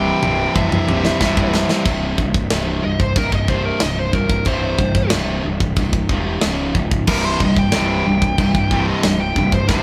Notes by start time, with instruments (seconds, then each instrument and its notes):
Already playing: picked electric bass C1, distorted electric guitar C2 G2 C3, lead electric guitar G5
0.22 picked electric bass C1, distorted electric guitar C2 G2 C3, mid tom
0.55 picked electric bass C1, lead electric guitar E5, kick, mid tom
0.72 mid tom
0.88 picked electric bass C1, distorted electric guitar C2 G2 C3, mid tom
1.05 snare
1.21 picked electric bass C1, distorted electric guitar C2 G2 C3, kick, snare
1.37 kick
1.54 snare
1.69 snare
1.86 picked electric bass C1, distorted electric guitar C2 G2 C3, kick, china
2.18 picked electric bass C1, distorted electric guitar C2 G2, kick
2.34 kick
2.50 picked electric bass C1, distorted electric guitar C2 G2 C3, snare, china
2.83 picked electric bass C1, distorted electric guitar C2 G2, lead electric guitar D#5
3.00 lead electric guitar C5, kick
3.16 picked electric bass C1, distorted electric guitar C2 G2, lead electric guitar A#4, kick, china
3.32 lead electric guitar D#5, kick
3.48 distorted electric guitar C2 G2 C3, lead electric guitar C5, kick
3.65 lead electric guitar A#4
3.80 picked electric bass C1, distorted electric guitar C2 G2, lead electric guitar D#5, snare, china
3.99 lead electric guitar C5
4.13 picked electric bass C1, distorted electric guitar C2 G2, lead electric guitar A#4, kick
4.30 kick
4.45 picked electric bass C1, distorted electric guitar C2 G2 C3, lead electric guitar C5, kick, china
4.78 picked electric bass C1, distorted electric guitar C2 G2, kick
4.95 kick
5.10 picked electric bass C1, distorted electric guitar C2 G2 C3, snare, china
5.44 picked electric bass C1, distorted electric guitar C2 G2
5.60 kick
5.76 picked electric bass C1, distorted electric guitar C2 G2, kick, china
5.93 kick
6.09 picked electric bass E1, distorted electric guitar C2 G2 C3, kick
6.41 picked electric bass C#1, distorted electric guitar C#2 G#2 C#3, snare, china
6.75 picked electric bass C#1, distorted electric guitar C#2 G#2, kick
6.91 kick
7.07 picked electric bass C1, distorted electric guitar C2 G2 C3, lead electric guitar A#4, kick, china, crash
7.25 lead electric guitar C5
7.40 picked electric bass C1, distorted electric guitar C2 G2, lead electric guitar D#5, kick
7.57 lead electric guitar G5, kick
7.72 picked electric bass C1, distorted electric guitar C2 G2 C3, snare, china
8.07 picked electric bass C1, distorted electric guitar C2 G2
8.22 kick
8.38 picked electric bass C1, distorted electric guitar C2 G2, kick, china
8.55 kick
8.71 distorted electric guitar C2 G2 C3, kick
8.90 lead electric guitar D#5
9.03 picked electric bass C1, distorted electric guitar C2 G2, snare, china
9.20 lead electric guitar G5
9.36 picked electric bass C1, distorted electric guitar C2 G2, kick
9.52 lead electric guitar C5, kick
9.69 picked electric bass C1, distorted electric guitar C2 G2 C3, lead electric guitar C5, kick, snare